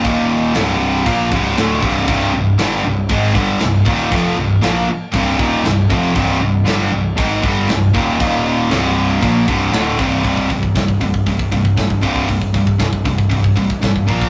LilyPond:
<<
  \new Staff \with { instrumentName = "Distorted electric guitar" } { \clef bass \time 4/4 \key c \minor \tempo 4 = 118 <ees, bes, ees>4 <c, g, c>4 <bes, f bes>8 <c, g, c>8 <d, a, d>8 <c, g, c>8 | <c, g, c>8 <c, g,>8 <g, d g>8 <c, g,>8 <aes, ees aes>8 <g, d g>8 <c, g,>8 <ees, bes, ees>8 | <f, c f>8 <c, g,>8 <bes, f bes>8 r8 <c, g, c>8 <ees, bes, ees>8 <c, g,>8 <f, c f>8 | <c, g, c>8 <c, g,>8 <g, d g>8 <c, g,>8 <aes, ees aes>8 <g, d g>8 <c, g,>8 <ees, bes, ees>8 |
<ees, bes, ees>4 <c, g, c>4 <bes, f bes>8 <c, g, c>8 <d, a, d>8 <c, g, c>8 | <c, g, c>8 <c, g,>8 <c, g,>8 <c, g,>8 <c, g,>8 <c, g,>8 <c, g,>8 <c, g, c>8 | <c, g,>8 <c, g,>8 <c, g,>8 <c, g,>8 <c, g,>8 <c, g,>8 <c, g,>8 <bes, f bes>8 | }
  \new Staff \with { instrumentName = "Distorted electric guitar" } { \clef bass \time 4/4 \key c \minor <ees, bes, ees>4 <c, g, c>4 <bes, f bes>8 <c, g, c>8 <d, a, d>8 <c, g, c>8 | <c, g, c>8 <c, g,>8 <g, d g>8 <c, g,>8 <aes, ees aes>8 <g, d g>8 <c, g,>8 <ees, bes, ees>8 | <f, c f>8 <c, g,>8 <bes, f bes>8 r8 <c, g, c>8 <ees, bes, ees>8 <c, g,>8 <f, c f>8 | <c, g, c>8 <c, g,>8 <g, d g>8 <c, g,>8 <aes, ees aes>8 <g, d g>8 <c, g,>8 <ees, bes, ees>8 |
<ees, bes, ees>4 <c, g, c>4 <bes, f bes>8 <c, g, c>8 <d, a, d>8 <c, g, c>8 | <c, g, c>8 <c, g,>8 <c, g,>8 <c, g,>8 <c, g,>8 <c, g,>8 <c, g,>8 <c, g, c>8 | <c, g,>8 <c, g,>8 <c, g,>8 <c, g,>8 <c, g,>8 <c, g,>8 <c, g,>8 <bes, f bes>8 | }
  \new Staff \with { instrumentName = "Picked electric bass" } { \clef bass \time 4/4 \key c \minor ees,,4 c,,4 bes,,8 c,,8 d,,8 c,,8 | c,,8 c,,8 g,,8 c,,8 aes,,8 g,,8 c,,8 ees,,8 | f,,8 c,,8 bes,,8 r8 c,,8 ees,,8 c,,8 f,,8 | c,,8 c,,8 g,,8 c,,8 aes,,8 g,,8 c,,8 ees,,8 |
ees,,4 c,,4 bes,,8 c,,8 d,,8 c,,8 | c,,8 c,,8 c,,8 c,,8 c,,8 c,,8 g,,8 c,,8 | c,,8 c,,8 c,,8 c,,8 c,,8 c,,8 aes,,8 bes,,8 | }
  \new DrumStaff \with { instrumentName = "Drums" } \drummode { \time 4/4 <cymc bd>4 <cymc sn>4 <cymc bd>8 bd8 <cymc sn>8 bd8 | <cymc bd>4 <cymc sn>4 <cymc bd>8 bd8 <cymc sn>8 bd8 | <cymc bd>4 <cymc sn>4 <cymc bd>8 bd8 <cymc sn>8 bd8 | <cymc bd>4 <cymc sn>4 <cymc bd>8 bd8 <cymc sn>8 bd8 |
<cymc bd>4 <cymc sn>4 <cymc bd>8 bd8 <cymc sn>8 bd8 | <hho bd>16 bd16 <hho bd>16 bd16 <hho bd sn>16 bd16 <hho bd>16 bd16 <hho bd>16 bd16 <hho bd>16 bd16 <hho bd sn>16 bd16 <hho bd>16 bd16 | <hho bd>16 bd16 <hho bd>16 bd16 <hho bd sn>16 bd16 <hho bd>16 bd16 <hho bd>16 bd16 <hho bd>16 bd16 <hho bd sn>16 bd16 <hho bd>16 bd16 | }
>>